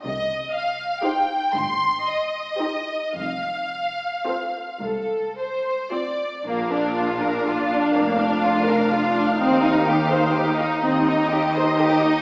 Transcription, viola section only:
X:1
M:6/8
L:1/8
Q:3/8=40
K:Bb
V:1 name="Viola section"
z2 [EG] z2 [EG] | z2 [CF] z2 [CF] | D6 | E6 |]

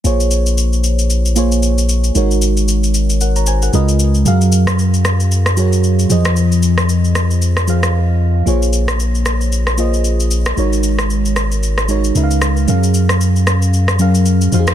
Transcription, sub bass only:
X:1
M:4/4
L:1/8
Q:"Swing 16ths" 1/4=114
K:Bbm
V:1 name="Sub bass" clef=bass
B,,,8 | A,,,6 D,,2 | G,,6- G,, F,,- | F,,8 |
B,,,8 | A,,,6 D,,2 | G,,6- G,, F,, |]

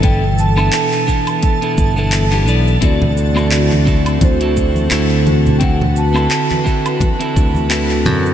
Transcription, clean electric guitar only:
X:1
M:4/4
L:1/16
Q:"Swing 16ths" 1/4=86
K:Dmix
V:1 name="Clean electric guitar"
[B,DEA] z2 [B,DEA]3 [B,DEA]3 [B,DEA]2 [B,DEA]2 [B,DEG] [B,DEd]2 | [CEFA] z2 [CEFA]3 [CEFA]3 [CEFA]3 [CEFA]4 | [CEFA] z2 [CEFA]3 [CEFA]3 [CEFA]3 [CEFA]4 |]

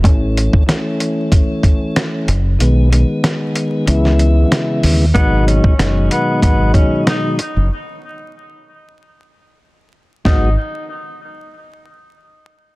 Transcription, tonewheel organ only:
X:1
M:4/4
L:1/8
Q:"Swing 16ths" 1/4=94
K:Alyd
V:1 name="Tonewheel organ" clef=bass
[E,A,C]2 [E,A,C]4- [E,A,C] z | [D,G,B,] [D,G,B,]3 [C,E,G,B,E]4 | [K:G#m] [B,,D,F,G,D]2 [B,,D,F,G,D]4- [B,,D,F,G,D] z | z8 |
[D,F,G,B,F] z6 z |]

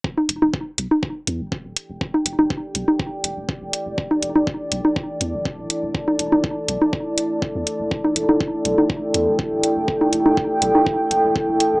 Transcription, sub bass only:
X:1
M:4/4
L:1/16
Q:1/4=122
K:Em
V:1 name="Sub bass" clef=bass
z2 E,,, E,,, z2 B,,, z3 E,, E,,, z D,,, z E,,, | z2 E,,, E,,, z2 B,,, z3 E,,, E,,, z E,,, z E,,, | z2 E,,, E,,, z2 B,,, z3 E,, E,,, z D,,, z E,,, | z2 E,,, E,,, z2 B,,, z6 E,, z E,,, |
z2 E,,, E,,, z2 B,,, z3 E,, E,,, z D,,, z E,,, | z2 E,,, E,,, z2 B,,, z3 E,,, E,,, z E,,, z E,,, |]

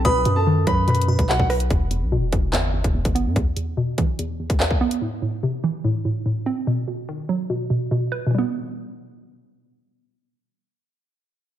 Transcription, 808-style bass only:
X:1
M:4/4
L:1/16
Q:1/4=145
K:Em
V:1 name="808-style bass" clef=bass
B,,,2 F,,4 F,,4- F,, B,,,2 B,,,3 | E,,,3 B,,,3/2 E,,,3/2 E,,,2 G,,,3 E,,,2 G,,,2 G,, | z16 | z16 |
z16 | z16 | z16 |]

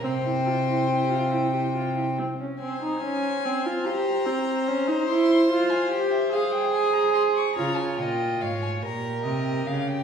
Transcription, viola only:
X:1
M:6/8
L:1/16
Q:3/8=48
K:Fm
V:1 name="Viola"
C =E F E G F E G F E C D | C E D2 C F G2 C2 D E | =E2 F2 G2 A6 | F6 G6 |]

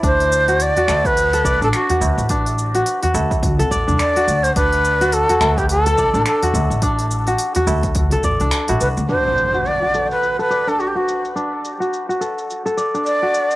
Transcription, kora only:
X:1
M:4/4
L:1/16
Q:"Swing 16ths" 1/4=106
K:Dmix
V:1 name="Kora"
D3 F z F A3 A d D2 F3 | D3 F z F A3 A d D2 F3 | D3 F z F A3 A d D2 F3 | D3 F z F A3 A d D2 F3 |
D3 F z F A3 A d D2 F3 | D3 F z F A3 A d D2 F3 |]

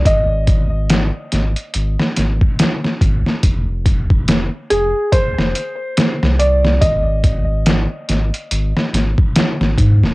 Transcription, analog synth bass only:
X:1
M:4/4
L:1/16
Q:"Swing 16ths" 1/4=71
K:Ablyd
V:1 name="Analog synth bass" clef=bass
A,,,4- A,,, z A,,, z A,,, z A,,, z3 A,,, z | F,,,4- F,,, z F,,, z2 F,,, z3 C,,3 | A,,,4- A,,, z A,,, z A,,, z A,,, z2 A,,, A,, E,,, |]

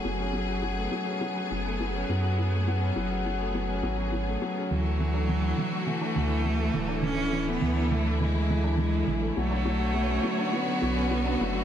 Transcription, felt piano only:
X:1
M:4/4
L:1/16
Q:1/4=103
K:F#m
V:1 name="Felt piano" clef=bass
F, C F, F F, A, F, C F, F F, A, F, C F, F | F, A, F, C F, F F, A, F, C F, F F, A, F, C | E, A, E, D E, E E, A, E, D E, E E, A, E, D | E, E E, A, E, D E, E E, A, E, D E, E E, A, |
F, D F, F F, C F, D F, F F, C F, D F, F |]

